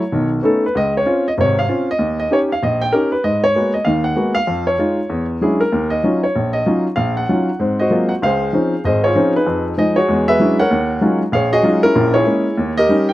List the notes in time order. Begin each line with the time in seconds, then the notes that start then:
Already playing: C#5
0.12 B1 D#3
0.43 A3 B3 C#4 D#4 A4
0.66 B4
0.75 C#2 D#5
0.97 C#5
1.06 C4 C#4 F4
1.28 D#5
1.38 G#1 C3 C#5
1.59 F5
1.68 C4 C#4 F4
1.91 D#5
1.99 D#2
2.20 D#5
2.31 C#4 D#4 G4 C#5
2.52 F5
2.63 A#1 D#5
2.81 G5
2.93 C#4 D#4 G4 A#4
3.12 B4
3.24 G#2 D#5
3.44 C#5
3.55 G#3 A#3 B3 F#4
3.74 D#5
3.85 D#2 D#3 F5
4.04 F#5
4.16 G#3 A#3 B3 F#4
4.35 F5
4.47 F2
4.67 C#5
4.78 G#3 D#4 F4
5.09 E2
5.41 F#3 G#3 C#4 D4 E4 G#4
5.61 A#4
5.72 D#2
5.90 D#5
6.04 F#3 C#4 D#4 F4
6.23 C#5
6.36 A#1
6.53 D#5
6.66 F#3 C#4 D#4 F4
6.96 A#1 F5
7.17 F#5
7.29 F#3 C#4 D#4 F4
7.59 G#2 C4
7.79 F#4 C5 D#5
7.90 F#3 G#3 A#3 C4 F4
8.09 F#5
8.22 C#2 G#4 C5 F5
8.53 F3 C4 C#4 D#4
8.84 G#1 G#4 C5 D#5
9.04 F4 G#4 C#5
9.15 F3 C4 C#4 D#4
9.36 D#4 G#4 B4
9.47 F2
9.78 F3 G#3 D#4 D#5
9.96 F#4 G#4 C#5
10.08 E2 G#3
10.28 G#4 B4 E5
10.40 F#3 G#3 C#4 D4 E4
10.59 A#4 C#5 F#5
10.71 D#2
11.01 F#3 G#3 C#4 D#4 F4
11.32 A#1 G#4 C#5 F5
11.53 F#4 G#4 D#5
11.63 F#3 G#3 C#4 D#4 F4
11.83 C#4 E4 A#4
11.95 A#1 A#2
12.14 E4 G#4 C#5
12.26 G#3 A#3 C#4
12.58 D#2
12.78 G4 A#4 D#5
12.89 G3 C#4 D#4
13.09 G5